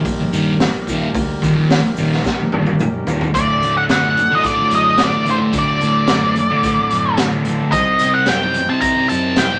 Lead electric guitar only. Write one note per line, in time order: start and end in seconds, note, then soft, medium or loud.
3.35 3.73 D5 medium
3.77 3.82 F#5 medium
3.91 4.33 F#5 medium
4.35 4.46 D#5 medium
4.46 4.74 D5 medium
4.75 5.02 D#5 medium
5.04 5.30 D5 medium
5.31 5.37 C5 medium
5.59 7.17 D5 medium
7.72 8.15 D#5 medium
8.14 8.28 F#5 medium
8.29 8.67 G5 medium
8.70 8.81 A5 medium
8.81 9.09 A#5 medium
9.09 9.38 A5 medium
9.38 9.59 G5 medium